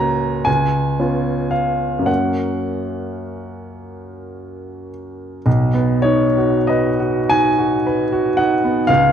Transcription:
0.00 0.46 C#2 medium
0.00 0.43 A#3 soft
0.00 0.43 C#4 soft
0.00 0.43 F#4 soft
0.00 0.45 G#5 medium
0.00 0.45 A#5 medium
0.45 0.97 C#2 soft
0.45 1.51 G#5 medium
0.99 2.04 B3 soft
0.99 2.04 C#4 soft
0.99 2.04 F4 soft
1.51 2.07 F5 medium
1.99 5.37 F#2 soft
2.05 5.40 A#3 soft
2.05 5.41 C#4 soft
2.05 5.41 F#4 soft
2.05 4.89 F#5 soft
5.46 8.85 B1 soft
5.74 6.24 B3 soft
6.02 6.56 D#4 soft
6.02 6.68 C#5 medium
6.37 6.89 F#4 soft
6.67 7.19 B4 soft
6.67 7.30 D#5 medium
7.00 7.48 F#4 soft
7.29 7.76 D#4 soft
7.29 8.38 G#5 medium
7.58 8.02 F#4 soft
7.87 8.28 B4 soft
8.12 8.53 F#4 soft
8.37 8.79 D#4 soft
8.37 8.88 F#5 medium
8.64 8.89 B3 soft
8.87 9.12 C#2 medium
8.87 9.12 F5 medium

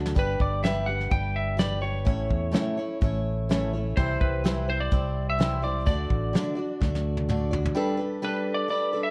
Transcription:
0.00 0.13 D2 medium
0.00 0.14 D4 soft
0.00 0.16 F#4 soft
0.00 0.16 A4 soft
0.06 snare medium
0.15 0.39 G1 medium
0.15 0.62 G3 medium
0.15 0.62 D4 medium
0.15 0.64 G4 medium
0.15 0.64 B4 medium
0.15 kick medium
0.15 closed hi-hat medium
0.19 0.40 B4 medium
0.40 1.08 G1 medium
0.40 0.63 D5 medium
0.40 kick medium
0.63 0.87 G3 medium
0.63 0.88 D4 medium
0.63 0.88 G4 medium
0.63 0.85 B4 medium
0.63 0.89 E5 medium
0.63 snare loud
0.63 closed hi-hat medium
0.86 1.11 D4 soft
0.86 1.12 G4 soft
0.86 1.11 B4 soft
0.86 1.09 F#5 medium
1.00 snare soft
1.10 2.07 G1 medium
1.10 1.56 G3 medium
1.10 1.56 D4 medium
1.10 1.58 G4 medium
1.10 1.59 B4 medium
1.10 1.36 G5 medium
1.10 kick loud
1.10 closed hi-hat medium
1.36 1.59 E5 medium
1.57 1.82 G3 medium
1.57 1.82 D4 medium
1.57 1.81 G4 medium
1.57 1.79 B4 medium
1.57 1.81 D5 medium
1.57 snare loud
1.57 closed hi-hat medium
1.81 2.06 D4 soft
1.81 2.06 G4 soft
1.81 2.06 B4 soft
1.81 3.21 C#5 medium
2.05 2.29 A1 medium
2.05 2.50 A2 medium
2.05 2.52 E3 medium
2.05 2.51 A3 medium
2.05 2.52 C#4 medium
2.05 2.53 E4 medium
2.05 2.53 C#5 medium
2.05 kick loud
2.05 closed hi-hat medium
2.31 2.53 E2 medium
2.31 kick medium
2.52 2.77 A2 medium
2.52 2.77 E3 medium
2.52 2.77 A3 medium
2.52 2.78 C#4 medium
2.52 2.78 E4 medium
2.52 2.76 C#5 medium
2.52 snare loud
2.52 closed hi-hat medium
2.77 3.00 A3 soft
2.77 3.01 C#4 soft
2.77 3.02 E4 medium
2.77 3.01 C#5 medium
3.01 3.93 A1 loud
3.01 3.49 A3 medium
3.01 3.50 C#4 medium
3.01 3.50 E4 medium
3.01 3.50 C#5 medium
3.01 kick loud
3.01 closed hi-hat medium
3.49 3.73 A2 medium
3.49 3.74 E3 medium
3.49 3.74 A3 medium
3.49 3.74 C#4 medium
3.49 3.73 E4 medium
3.49 3.72 C#5 medium
3.49 snare loud
3.49 closed hi-hat medium
3.73 3.97 A3 soft
3.73 3.97 C#4 soft
3.73 3.97 E4 medium
3.73 3.97 C#5 medium
3.96 4.19 C2 medium
3.96 4.43 C3 medium
3.96 4.43 E3 medium
3.96 4.43 G3 medium
3.96 4.44 C4 medium
3.96 4.45 E4 medium
3.96 4.21 C5 medium
3.96 4.45 C5 medium
3.96 kick loud
3.96 closed hi-hat medium
4.21 4.88 C2 medium
4.21 4.69 B4 medium
4.21 kick medium
4.44 4.68 C3 medium
4.44 4.68 E3 medium
4.44 4.68 G3 medium
4.44 4.68 C4 medium
4.44 4.68 E4 medium
4.44 4.67 C5 medium
4.44 snare loud
4.44 closed hi-hat medium
4.68 4.90 G3 soft
4.68 4.91 C4 soft
4.68 4.92 E4 soft
4.68 4.92 C5 soft
4.68 4.81 C5 medium
4.80 5.29 D5 medium
4.91 5.87 C2 medium
4.91 5.39 G3 medium
4.91 5.39 C4 medium
4.91 5.39 E4 medium
4.91 5.39 C5 medium
4.91 kick medium
4.91 closed hi-hat medium
5.30 5.63 E5 loud
5.38 5.62 C3 medium
5.38 5.63 E3 medium
5.38 5.63 G3 medium
5.38 5.63 C4 medium
5.38 5.62 E4 medium
5.38 5.61 C5 medium
5.38 snare loud
5.38 closed hi-hat medium
5.62 5.86 G3 soft
5.62 5.86 C4 soft
5.62 5.87 E4 soft
5.62 5.86 C5 medium
5.62 5.85 D5 medium
5.86 6.09 D2 medium
5.86 6.32 D3 medium
5.86 6.33 A3 medium
5.86 6.33 D4 medium
5.86 6.34 F#4 medium
5.86 6.77 D5 medium
5.86 6.35 D5 medium
5.86 kick loud
5.86 closed hi-hat medium
6.10 6.32 A1 medium
6.10 kick medium
6.33 6.57 D3 medium
6.33 6.58 A3 medium
6.33 6.57 D4 medium
6.33 6.55 F#4 medium
6.33 6.54 D5 medium
6.33 snare loud
6.33 closed hi-hat medium
6.55 6.81 D4 soft
6.55 6.81 F#4 soft
6.55 6.80 D5 medium
6.80 7.72 D2 loud
6.80 7.28 A3 medium
6.80 7.29 D4 medium
6.80 7.29 F#4 medium
6.80 7.30 D5 medium
6.80 kick loud
6.80 snare medium
6.95 snare medium
7.17 high tom medium
7.29 7.52 D3 medium
7.29 7.52 A3 medium
7.29 7.53 D4 medium
7.29 7.51 F#4 medium
7.29 7.50 D5 medium
7.29 mid tom medium
7.51 7.74 D4 soft
7.51 7.76 F#4 medium
7.51 7.75 D5 medium
7.51 floor tom medium
7.65 floor tom medium
7.75 7.99 G3 loud
7.75 9.11 G3 medium
7.75 7.99 D4 loud
7.75 9.11 D4 medium
7.75 9.11 A4 medium
7.75 7.98 A4 medium
7.75 9.11 B4 medium
7.75 7.96 B4 loud
7.97 8.22 D4 soft
7.97 8.22 A4 medium
7.97 8.22 B4 medium
8.22 8.68 G3 medium
8.22 8.68 D4 medium
8.22 8.69 A4 medium
8.22 8.71 B4 medium
8.22 8.53 B4 medium
8.54 8.69 D5 medium
8.68 8.93 G3 medium
8.68 8.93 D4 medium
8.68 8.93 A4 medium
8.68 8.92 B4 medium
8.68 9.03 D5 loud
8.93 9.11 D4 soft
8.93 9.11 A4 medium
8.93 9.11 B4 medium
9.03 9.11 E5 medium

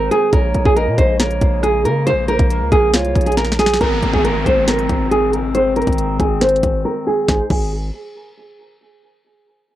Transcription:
0.00 0.29 D#3 medium
0.00 3.64 G#3 medium
0.00 0.29 C4 medium
0.00 0.29 C5 loud
0.11 0.30 G#4 medium
0.11 closed hi-hat medium
0.33 0.54 A#1 loud
0.33 3.64 C#3 medium
0.33 3.64 A#3 medium
0.33 0.64 A#4 loud
0.33 0.74 C#5 loud
0.33 kick loud
0.33 closed hi-hat medium
0.54 0.65 A#1 loud
0.54 closed hi-hat medium
0.65 0.89 A#1 loud
0.65 0.75 G#4 medium
0.65 kick loud
0.76 0.95 A#4 medium
0.76 1.17 D#5 medium
0.76 closed hi-hat medium
0.87 0.98 A#2 loud
0.98 1.40 A#1 loud
0.98 1.17 C5 medium
0.98 kick loud
0.98 closed hi-hat medium
1.20 1.61 A#4 medium
1.20 1.61 C#5 loud
1.20 snare loud
1.20 closed hi-hat medium
1.31 closed hi-hat medium
1.41 1.87 A#1 loud
1.41 kick medium
1.41 closed hi-hat medium
1.63 1.82 G#4 medium
1.63 cross-stick medium
1.63 closed hi-hat medium
1.85 2.14 C#3 loud
1.85 2.03 A#4 medium
1.85 closed hi-hat medium
2.07 2.25 C5 loud
2.07 2.48 C5 loud
2.07 closed hi-hat medium
2.12 2.38 A#1 loud
2.28 2.69 A#4 medium
2.28 closed hi-hat soft
2.28 open hi-hat medium
2.39 2.63 A#1 loud
2.39 kick loud
2.39 closed hi-hat medium
2.50 2.91 A#4 medium
2.50 closed hi-hat medium
2.61 2.72 C#2 loud
2.72 2.95 A#1 loud
2.72 2.90 G#4 medium
2.72 kick loud
2.72 closed hi-hat medium
2.94 3.14 C2 loud
2.94 3.24 F4 medium
2.94 3.35 C#5 loud
2.94 snare loud
2.94 closed hi-hat medium
3.05 closed hi-hat medium
3.16 3.78 A#1 loud
3.16 kick medium
3.16 closed hi-hat medium
3.21 closed hi-hat medium
3.26 3.36 G#4 medium
3.26 closed hi-hat medium
3.32 closed hi-hat medium
3.37 3.56 A#4 medium
3.37 snare medium
3.37 closed hi-hat medium
3.45 snare medium
3.52 snare medium
3.59 3.77 G#4 medium
3.59 snare medium
3.59 closed hi-hat medium
3.66 snare loud
3.74 snare loud
3.81 4.02 G#1 loud
3.81 7.25 D#3 medium
3.81 7.25 G#3 medium
3.81 7.25 C4 medium
3.81 4.11 A#4 medium
3.81 kick loud
3.81 closed hi-hat medium
3.81 downlifter medium
4.02 4.13 G#1 loud
4.02 closed hi-hat medium
4.13 4.45 G#1 loud
4.13 4.23 G#4 medium
4.13 kick loud
4.24 4.43 A#4 medium
4.24 closed hi-hat medium
4.46 4.88 G#1 loud
4.46 4.64 C5 medium
4.46 kick loud
4.46 closed hi-hat medium
4.68 5.08 A#4 medium
4.68 snare loud
4.68 closed hi-hat medium
4.79 closed hi-hat medium
4.89 5.83 G#1 loud
4.89 kick medium
4.89 closed hi-hat medium
5.11 5.30 G#4 medium
5.11 closed hi-hat medium
5.33 5.51 A#4 medium
5.33 closed hi-hat medium
5.55 5.73 C5 loud
5.55 closed hi-hat medium
5.76 6.17 A#4 medium
5.76 closed hi-hat soft
5.76 open hi-hat medium
5.82 closed hi-hat soft
5.87 6.19 G#1 loud
5.87 kick loud
5.87 closed hi-hat medium
5.93 closed hi-hat medium
5.98 closed hi-hat medium
6.20 6.62 G#1 loud
6.20 6.38 G#4 medium
6.20 kick loud
6.20 closed hi-hat medium
6.41 6.82 C5 medium
6.41 snare loud
6.41 closed hi-hat soft
6.49 closed hi-hat medium
6.56 closed hi-hat medium
6.63 6.84 G#1 loud
6.63 kick medium
6.63 closed hi-hat medium
6.85 7.03 A#4 medium
7.07 7.25 G#4 medium
7.28 7.41 G#1 loud
7.28 7.49 G#3 medium
7.28 7.49 D#4 medium
7.28 7.41 G#4 medium
7.28 7.49 C5 medium
7.28 kick loud
7.28 snare medium
7.50 7.91 G#1 loud
7.50 7.70 G#4 medium
7.50 kick loud
7.50 crash medium

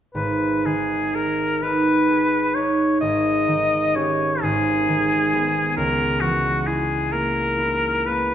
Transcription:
0.15 3.00 G#1 soft
0.15 0.67 B4 soft
0.65 3.04 D#3 soft
0.65 1.16 G#4 soft
1.15 2.08 G#4 soft
1.15 1.64 A#4 soft
1.62 2.55 D#4 soft
1.62 2.56 B4 medium
2.09 3.05 G#4 soft
2.55 5.80 D#4 soft
2.55 3.00 C#5 soft
3.01 4.41 G#1 soft
3.01 3.97 D#5 medium
3.48 4.45 D#3 soft
3.95 4.46 C#4 soft
3.95 4.46 G4 soft
3.95 4.43 C#5 medium
4.42 5.80 G#1 soft
4.42 5.76 G#4 medium
4.89 5.80 D#3 soft
5.33 5.80 B3 soft
5.33 5.80 G#4 soft
5.77 8.35 C#2 soft
5.77 6.22 A#4 medium
6.20 8.35 E3 soft
6.20 6.68 F#4 soft
6.66 7.58 E4 soft
6.66 7.14 G#4 soft
7.12 8.07 A#3 soft
7.12 8.07 A#4 medium
7.59 8.35 E4 soft
8.06 8.35 A#3 soft
8.06 8.35 B4 soft

